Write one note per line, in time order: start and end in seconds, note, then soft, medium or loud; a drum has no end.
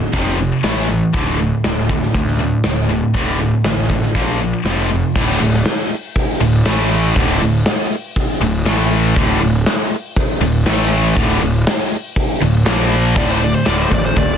0.00 0.10 D2 medium
0.00 0.11 A2 medium
0.13 0.51 F1 medium
0.13 0.37 F2 medium
0.13 0.37 C3 loud
0.13 0.38 F3 medium
0.13 kick medium
0.13 open hi-hat medium
0.27 snare soft
0.38 0.61 F2 medium
0.38 0.61 C3 medium
0.63 1.01 A1 medium
0.63 0.87 A2 medium
0.63 0.87 E3 medium
0.63 0.88 A3 loud
0.63 snare loud
0.63 open hi-hat medium
0.89 1.12 A2 medium
0.89 1.12 E3 medium
1.13 1.51 D1 medium
1.13 1.37 D2 medium
1.13 1.38 A2 medium
1.13 1.38 D3 loud
1.13 kick loud
1.13 open hi-hat medium
1.39 1.62 D2 medium
1.39 1.62 A2 medium
1.64 2.01 D1 medium
1.64 1.87 D2 medium
1.64 1.87 A2 medium
1.64 snare loud
1.64 open hi-hat soft
1.89 2.12 D2 medium
1.89 2.13 A2 medium
1.89 kick medium
2.02 snare soft
2.14 2.52 D2 medium
2.14 2.37 D2 medium
2.14 2.38 A2 medium
2.14 kick medium
2.14 open hi-hat medium
2.27 snare soft
2.39 2.62 D2 medium
2.39 2.62 A2 medium
2.64 3.01 D1 medium
2.64 2.87 D2 medium
2.64 2.87 A2 medium
2.64 snare loud
2.64 open hi-hat medium
2.89 3.12 D2 medium
2.89 3.12 A2 medium
3.14 3.52 D1 medium
3.14 3.38 D2 medium
3.14 3.38 A2 medium
3.14 3.39 D3 medium
3.14 kick loud
3.14 open hi-hat medium
3.39 3.62 D2 medium
3.39 3.63 A2 medium
3.64 4.02 A1 medium
3.64 3.87 D2 medium
3.64 3.88 A2 medium
3.64 snare loud
3.64 open hi-hat medium
3.90 4.13 D2 medium
3.90 4.13 A2 medium
3.90 kick medium
4.02 snare soft
4.15 4.52 A#1 medium
4.15 4.39 A#2 medium
4.15 4.39 F3 loud
4.15 4.39 A#3 loud
4.15 kick medium
4.15 open hi-hat medium
4.28 snare soft
4.41 4.63 A#2 medium
4.41 4.63 F3 medium
4.65 5.02 F1 medium
4.65 4.89 F2 medium
4.65 4.89 C3 medium
4.65 4.90 F3 medium
4.65 snare loud
4.65 open hi-hat medium
4.90 5.13 F2 medium
4.90 5.13 C3 medium
5.15 5.39 D1 medium
5.15 5.39 D2 medium
5.15 5.40 A2 medium
5.15 5.40 D3 medium
5.15 kick loud
5.15 crash loud
5.40 5.64 D1 medium
5.40 5.60 D2 medium
5.40 5.61 A2 medium
5.40 open hi-hat medium
5.54 snare soft
5.66 snare loud
5.66 open hi-hat medium
5.91 open hi-hat medium
6.16 kick loud
6.16 open hi-hat medium
6.41 6.64 D1 medium
6.41 6.61 D2 medium
6.41 6.61 A2 medium
6.41 open hi-hat medium
6.65 7.12 A1 medium
6.65 7.15 A2 medium
6.65 7.15 E3 medium
6.65 7.15 A3 loud
6.65 snare loud
6.91 open hi-hat medium
7.15 7.39 D1 medium
7.15 7.40 D2 medium
7.15 7.40 A2 loud
7.15 7.41 D3 loud
7.15 kick loud
7.41 7.64 D1 medium
7.41 7.61 D2 medium
7.41 7.61 A2 medium
7.41 open hi-hat medium
7.66 snare loud
7.66 open hi-hat medium
7.91 open hi-hat medium
8.16 kick loud
8.16 open hi-hat medium
8.41 8.64 D1 medium
8.41 8.61 D2 medium
8.41 8.61 A2 medium
8.41 open hi-hat medium
8.65 9.12 A1 medium
8.65 9.15 A2 medium
8.65 9.15 E3 loud
8.65 9.15 A3 loud
8.65 snare loud
8.91 open hi-hat medium
9.16 9.39 D1 medium
9.16 9.39 D2 medium
9.16 9.39 A2 loud
9.16 9.41 D3 medium
9.16 kick loud
9.16 open hi-hat medium
9.41 9.64 D1 medium
9.41 9.61 D2 medium
9.41 9.61 A2 medium
9.41 open hi-hat medium
9.66 snare loud
9.66 open hi-hat medium
9.92 open hi-hat medium
10.16 kick loud
10.16 open hi-hat medium
10.41 10.64 D1 medium
10.41 10.61 D2 medium
10.41 10.61 A2 medium
10.41 open hi-hat medium
10.65 11.12 A1 medium
10.65 11.15 A2 medium
10.65 11.16 E3 loud
10.65 11.16 A3 loud
10.65 snare loud
10.92 open hi-hat medium
11.16 11.40 D1 medium
11.16 11.40 D2 loud
11.16 11.41 A2 loud
11.16 11.41 D3 loud
11.16 kick loud
11.41 11.64 D1 medium
11.41 11.61 D2 medium
11.41 11.62 A2 medium
11.41 open hi-hat medium
11.67 snare loud
11.67 open hi-hat medium
11.92 open hi-hat medium
12.16 kick loud
12.16 open hi-hat medium
12.42 12.65 D1 medium
12.42 12.62 D2 medium
12.42 12.62 A2 medium
12.42 open hi-hat medium
12.66 13.13 A#1 medium
12.66 13.15 A#2 medium
12.66 13.16 F3 loud
12.66 13.16 A#3 loud
12.66 snare loud
12.66 open hi-hat medium
12.91 open hi-hat medium
13.16 13.53 D1 medium
13.16 13.40 D2 medium
13.16 13.40 A2 medium
13.16 13.40 D3 loud
13.16 13.31 D5 loud
13.16 kick loud
13.16 crash loud
13.16 crash medium
13.31 13.44 C5 medium
13.41 13.64 D2 medium
13.41 13.64 A2 medium
13.41 13.54 D5 medium
13.54 13.67 C5 medium
13.65 13.85 D1 medium
13.65 13.89 D2 medium
13.65 13.90 A2 loud
13.65 13.91 D3 loud
13.65 13.82 D5 medium
13.65 snare loud
13.65 crash medium
13.82 13.94 C5 medium
13.91 14.10 A1 medium
13.91 14.14 D2 medium
13.91 14.14 A2 medium
13.91 14.05 D5 medium
13.91 kick medium
14.04 14.17 C5 medium
14.04 snare soft
14.16 14.35 D1 medium
14.16 14.38 D2 medium
14.16 14.38 A2 medium
14.16 14.38 D5 medium
14.16 kick medium
14.16 crash medium